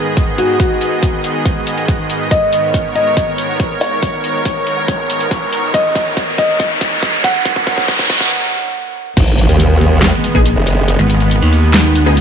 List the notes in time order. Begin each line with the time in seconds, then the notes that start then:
Already playing: G#2 D#3 B3 G#4 D#5
0.17 kick, closed hi-hat
0.38 F#4, closed hi-hat
0.60 kick, closed hi-hat
0.81 closed hi-hat
1.03 kick, closed hi-hat
1.24 closed hi-hat
1.45 kick, closed hi-hat
1.67 closed hi-hat
1.78 closed hi-hat
1.88 kick, closed hi-hat
2.10 closed hi-hat
2.31 A#4 C#5 D#5, kick, closed hi-hat, riser
2.53 closed hi-hat
2.74 kick, closed hi-hat
2.95 D#5, open hi-hat
3.17 kick, closed hi-hat
3.38 closed hi-hat
3.60 kick, closed hi-hat
3.81 C#5, open hi-hat
4.03 kick, closed hi-hat
4.24 closed hi-hat
4.45 kick, closed hi-hat
4.67 open hi-hat
4.88 kick, closed hi-hat
5.10 closed hi-hat
5.21 closed hi-hat
5.31 kick, closed hi-hat
5.53 open hi-hat
5.74 D#5, kick, closed hi-hat
5.95 kick, closed hi-hat
6.17 kick, closed hi-hat
6.38 D#5, kick, open hi-hat
6.60 kick, closed hi-hat
6.81 kick, closed hi-hat
7.03 kick, closed hi-hat
7.24 F#5, kick, open hi-hat
7.45 kick, closed hi-hat
7.56 kick
7.67 kick, closed hi-hat
7.78 kick
7.88 kick, closed hi-hat
7.99 kick
8.10 kick, open hi-hat
8.21 kick
9.17 G#1 D#3 G#3 B3, kick, closed hi-hat, crash, impact
9.28 closed hi-hat
9.38 closed hi-hat
9.49 D#2, closed hi-hat
9.60 closed hi-hat
9.81 open hi-hat
10.03 snare, clap, closed hi-hat
10.24 closed hi-hat
10.35 A#1 B3 D#4 G#4, kick
10.45 closed hi-hat
10.56 F#1
10.67 open hi-hat
10.88 closed hi-hat
10.99 G#1, closed hi-hat
11.10 closed hi-hat
11.20 closed hi-hat
11.31 closed hi-hat
11.42 D#2
11.53 open hi-hat
11.74 snare, clap, closed hi-hat
11.95 closed hi-hat
12.01 D2
12.06 B3 D#4 G#4
12.17 closed hi-hat